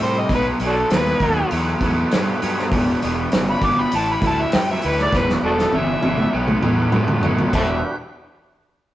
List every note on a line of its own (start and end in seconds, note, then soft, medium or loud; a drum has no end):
0.00 0.22 A2 medium
0.00 0.27 C3 medium
0.00 0.27 G3 medium
0.00 0.27 D4 medium
0.00 0.28 E4 medium
0.00 0.28 G4 medium
0.00 0.27 A#4 medium
0.00 0.21 C5 medium
0.00 open hi-hat medium
0.20 0.31 D#5 medium
0.29 0.52 B1 medium
0.29 0.57 B2 medium
0.29 0.58 F#3 medium
0.29 2.68 D#4 medium
0.29 2.68 F#4 medium
0.29 2.69 A4 medium
0.29 2.68 B4 medium
0.29 kick medium
0.29 open hi-hat medium
0.35 0.47 B4 loud
0.60 0.82 B1 medium
0.60 0.88 B2 medium
0.60 0.88 F#3 medium
0.60 open hi-hat medium
0.67 0.74 D4 medium
0.67 0.76 F#4 medium
0.67 0.93 A4 medium
0.90 1.13 D#2 medium
0.90 1.18 B2 medium
0.90 1.18 G#3 medium
0.90 snare loud
0.90 open hi-hat medium
0.96 1.52 B4 loud
1.20 1.42 D#2 medium
1.20 1.48 B2 medium
1.20 1.48 F#3 medium
1.20 kick medium
1.20 open hi-hat soft
1.51 1.74 E2 medium
1.51 1.78 B2 medium
1.51 1.78 F#3 medium
1.51 open hi-hat medium
1.81 2.03 E2 medium
1.81 2.09 B2 medium
1.81 2.09 F#3 medium
1.81 kick medium
1.81 open hi-hat medium
2.11 2.34 G2 medium
2.11 2.39 B2 medium
2.11 2.39 G#3 medium
2.11 snare loud
2.11 open hi-hat medium
2.42 2.73 G2 medium
2.42 2.69 B2 medium
2.42 2.69 F#3 medium
2.42 open hi-hat medium
2.59 snare soft
2.72 2.93 E1 medium
2.72 2.98 E2 medium
2.72 2.99 B2 medium
2.72 3.92 D4 medium
2.72 3.92 F#4 medium
2.72 3.91 G4 medium
2.72 3.91 B4 medium
2.72 kick loud
2.72 open hi-hat medium
3.02 3.25 E1 medium
3.02 3.29 E2 medium
3.02 3.29 B2 medium
3.02 open hi-hat medium
3.32 3.55 G1 medium
3.32 3.59 E2 medium
3.32 3.59 C#3 loud
3.32 snare loud
3.32 open hi-hat medium
3.51 3.67 B5 loud
3.61 3.84 G1 medium
3.61 3.90 E2 medium
3.61 3.90 B2 medium
3.61 3.82 D6 medium
3.61 kick medium
3.61 open hi-hat medium
3.81 3.98 B5 medium
3.92 4.15 A1 medium
3.92 4.20 A2 medium
3.92 4.20 E3 medium
3.92 5.12 C4 medium
3.92 5.12 E4 medium
3.92 5.12 G4 medium
3.92 5.12 B4 medium
3.92 open hi-hat medium
3.97 4.09 A5 medium
4.12 4.24 B5 medium
4.22 4.44 D2 medium
4.22 4.50 A2 medium
4.22 4.50 E3 medium
4.22 kick medium
4.22 open hi-hat medium
4.27 4.43 A5 loud
4.42 4.57 E5 medium
4.52 4.76 F#2 medium
4.52 4.80 A2 medium
4.52 4.80 F#3 medium
4.52 4.68 G5 loud
4.52 snare loud
4.52 open hi-hat medium
4.71 4.89 E5 medium
4.82 5.06 D2 medium
4.82 5.10 A2 medium
4.82 5.10 E3 medium
4.82 open hi-hat medium
4.88 4.99 B4 medium
4.98 snare soft
5.02 5.19 D5 loud
5.13 5.35 E1 medium
5.13 5.40 E2 medium
5.13 5.40 B2 medium
5.13 6.33 D4 medium
5.13 6.33 F#4 medium
5.13 6.32 G4 medium
5.13 6.32 B4 medium
5.13 kick loud
5.13 snare medium
5.17 5.29 B4 medium
5.30 snare medium
5.43 5.65 E1 medium
5.43 5.70 E2 medium
5.43 5.70 B2 medium
5.43 5.52 D4 medium
5.43 5.54 F#4 medium
5.43 5.77 A4 medium
5.59 snare soft
5.73 5.95 G1 medium
5.73 6.00 E2 medium
5.73 6.01 C#3 loud
5.73 6.33 E5 loud
5.73 high tom medium
6.03 6.26 G1 medium
6.03 6.30 E2 medium
6.03 6.30 B2 medium
6.03 high tom medium
6.18 mid tom medium
6.33 6.56 B1 medium
6.33 6.60 B2 medium
6.33 6.60 F#3 medium
6.33 7.54 D#4 medium
6.33 7.53 F#4 medium
6.33 7.53 A4 medium
6.33 7.53 B4 medium
6.48 mid tom medium
6.63 6.86 E2 medium
6.63 6.90 B2 medium
6.63 6.91 F#3 medium
6.63 mid tom medium
6.92 7.16 G2 medium
6.92 7.20 B2 medium
6.92 7.21 G#3 medium
6.92 mid tom loud
7.08 floor tom medium
7.23 7.46 F#2 medium
7.23 7.51 B2 medium
7.23 7.51 F#3 medium
7.23 floor tom loud
7.39 floor tom medium
7.53 7.81 E1 medium
7.53 7.78 E2 loud
7.53 7.78 B2 medium
7.53 7.78 E3 loud
7.53 7.96 D4 medium
7.53 7.96 F#4 medium
7.53 7.96 G4 medium
7.53 7.62 A4 medium
7.53 7.96 B4 medium
7.53 7.62 C5 medium
7.53 7.83 E5 medium
7.53 kick medium
7.53 crash medium